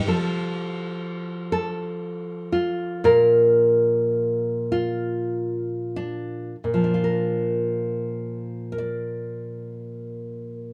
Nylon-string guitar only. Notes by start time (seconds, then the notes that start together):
0.07 F3 A4
1.52 A4
2.52 F4
3.04 A#2 A#4
4.72 F4
5.96 D4
6.64 A#2
6.74 F3
6.84 D4
6.94 F4
7.04 A#4
8.72 A#4
8.78 D5